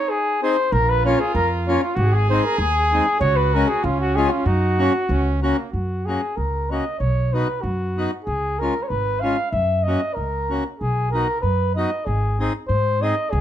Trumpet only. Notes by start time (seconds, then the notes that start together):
Already playing: D#4
0.72 F4
1.96 G#4
3.21 F#4
3.85 C#4
4.47 D#4
5.10 C#4
5.42 A#3